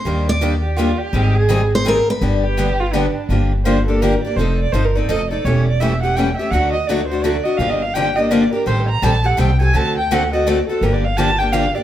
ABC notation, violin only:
X:1
M:3/4
L:1/16
Q:"Swing" 1/4=167
K:Gphr
V:1 name="Violin"
z6 G2 F2 G2- | G2 A3 z6 z | z2 G4 F2 D4 | [K:Gm] z4 c2 A2 B2 d2 |
c2 d2 (3c2 B2 d2 e2 d2 | ^c2 d2 =e2 ^f2 g2 e2 | ^f2 e2 d2 c2 d2 e2 | (3f2 e2 f2 g2 e2 d2 B2 |
c2 b2 a2 ^f2 g2 _a2 | a2 g2 ^f2 e2 d2 A2 | (3B2 d2 f2 a2 g2 f2 d2 |]